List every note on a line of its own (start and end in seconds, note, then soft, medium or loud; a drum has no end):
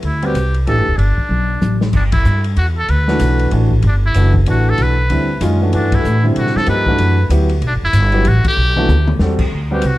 0.02 0.34 D2 medium
0.02 0.27 E4 medium
0.02 ride soft
0.22 0.34 G3 medium
0.22 0.34 C4 medium
0.22 0.34 F#4 medium
0.22 0.56 G4 medium
0.22 0.35 B4 medium
0.22 ride soft
0.34 0.66 C2 medium
0.34 hi-hat pedal soft
0.34 ride medium
0.54 ride soft
0.67 0.77 A1 medium
0.67 0.85 E3 medium
0.67 0.85 A3 soft
0.67 0.85 D4 soft
0.67 0.85 G4 medium
0.67 0.99 A4 medium
0.67 ride soft
0.77 0.88 G1 soft
0.88 0.97 D1 medium
0.97 1.16 G1 medium
0.97 1.80 D4 medium
0.97 ride soft
1.17 muted upright bass stroke soft
1.17 kick soft
1.29 1.60 B1 medium
1.29 high tom soft
1.61 1.92 A1 medium
1.61 hi-hat pedal soft
1.61 high tom medium
1.81 snare medium
1.93 2.24 G1 medium
1.93 2.04 D4 medium
1.93 kick medium
1.93 crash medium
2.12 2.42 E4 medium
2.12 kick medium
2.12 ride medium
2.25 2.56 G2 medium
2.25 hi-hat pedal medium
2.44 ride soft
2.56 2.87 E2 medium
2.56 2.66 F#4 medium
2.56 ride medium
2.78 2.91 A4 medium
2.88 3.19 D2 medium
2.88 3.52 B4 medium
2.88 ride soft
3.08 3.49 E3 medium
3.08 3.49 A3 medium
3.08 3.50 D4 medium
3.08 3.50 F#4 medium
3.08 snare soft
3.19 3.51 B1 medium
3.19 hi-hat pedal soft
3.19 ride medium
3.39 ride soft
3.51 3.82 A1 medium
3.51 3.69 E3 medium
3.51 3.69 A3 soft
3.51 3.69 D4 medium
3.51 3.70 F#4 medium
3.51 ride medium
3.71 kick medium
3.82 4.14 G1 medium
3.82 ride medium
3.87 3.95 D4 medium
4.06 4.34 E4 medium
4.14 4.46 F#1 medium
4.14 4.32 E3 medium
4.14 4.33 A3 soft
4.14 4.33 D4 medium
4.14 4.33 F#4 medium
4.14 hi-hat pedal soft
4.14 ride medium
4.34 kick medium
4.46 4.77 A1 medium
4.46 4.94 E3 medium
4.46 4.94 A3 soft
4.46 4.94 D4 medium
4.46 4.94 F#4 medium
4.46 4.71 F#4 medium
4.46 ride medium
4.69 4.84 A4 medium
4.78 5.09 B1 medium
4.78 ride medium
4.82 5.43 B4 medium
5.10 5.40 D2 medium
5.10 5.27 D3 medium
5.10 5.28 G3 medium
5.10 5.28 C4 soft
5.10 5.28 E4 medium
5.10 ride medium
5.41 5.72 F#2 medium
5.41 5.59 D#3 medium
5.41 5.59 G#3 medium
5.41 5.59 C#4 medium
5.41 5.59 F4 medium
5.41 hi-hat pedal soft
5.41 ride medium
5.61 5.72 E3 medium
5.61 5.72 A3 soft
5.61 5.72 D4 medium
5.61 5.73 F#4 medium
5.73 6.04 G2 medium
5.73 6.20 E3 medium
5.73 6.20 A3 medium
5.73 6.20 D4 medium
5.73 5.96 D4 medium
5.73 6.21 F#4 medium
5.73 ride medium
5.92 6.25 E4 medium
5.92 kick medium
5.92 ride medium
6.04 6.35 A2 medium
6.04 hi-hat pedal medium
6.24 6.65 D3 medium
6.24 6.65 G3 medium
6.24 6.65 C4 medium
6.24 6.66 E4 medium
6.36 6.54 B2 medium
6.36 6.58 F#4 medium
6.36 ride medium
6.46 snare soft
6.56 6.68 A4 medium
6.56 muted upright bass stroke soft
6.56 snare soft
6.66 6.98 G2 medium
6.66 6.84 F3 medium
6.66 6.85 A#3 medium
6.66 6.85 D#4 medium
6.66 6.85 G4 medium
6.66 7.28 B4 medium
6.66 ride medium
6.87 7.15 E3 medium
6.87 7.15 A3 medium
6.87 7.15 D4 medium
6.87 7.15 F#4 medium
6.87 kick medium
6.98 7.29 F#2 medium
6.98 ride medium
7.29 7.61 D2 medium
7.29 7.48 F#3 medium
7.29 7.48 B3 medium
7.29 7.48 E4 medium
7.29 7.48 G4 medium
7.29 hi-hat pedal medium
7.29 ride medium
7.49 ride soft
7.61 7.75 B1 medium
7.61 ride medium
7.67 7.74 D4 medium
7.73 7.83 G1 medium
7.83 7.93 F#1 medium
7.83 8.30 E4 medium
7.93 8.24 G1 medium
7.93 hi-hat pedal medium
7.93 ride medium
8.12 8.24 F#3 medium
8.12 8.24 B3 medium
8.12 8.25 E4 medium
8.12 8.25 G4 medium
8.12 ride soft
8.25 8.43 A1 medium
8.25 8.46 F#4 medium
8.25 ride medium
8.45 9.18 G4 loud
8.45 kick medium
8.45 ride medium
8.57 8.87 B1 medium
8.77 8.87 E3 medium
8.77 8.87 A3 medium
8.77 8.88 D4 medium
8.77 8.88 F#4 medium
8.77 mid tom medium
8.88 9.19 D2 medium
8.88 hi-hat pedal soft
8.88 mid tom medium
9.07 mid tom medium
9.19 9.50 E2 medium
9.19 9.38 G3 medium
9.19 9.38 C4 soft
9.19 9.38 F#4 medium
9.19 9.39 A4 medium
9.19 snare medium
9.39 kick medium
9.39 crash medium
9.52 9.82 D2 medium
9.71 9.82 G3 medium
9.71 9.82 C4 medium
9.71 9.82 F#4 medium
9.71 9.88 G4 medium
9.71 9.83 B4 medium
9.82 9.98 C2 medium
9.82 hi-hat pedal medium
9.82 ride medium
9.86 9.98 F#4 medium